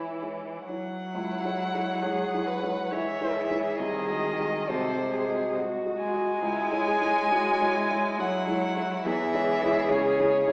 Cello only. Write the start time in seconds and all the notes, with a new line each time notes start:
Already playing: E3
0.65 F#3
2.92 E3
3.80 D#3
4.70 C3
6.00 G#3
8.18 F#3
9.04 E3
9.90 C#3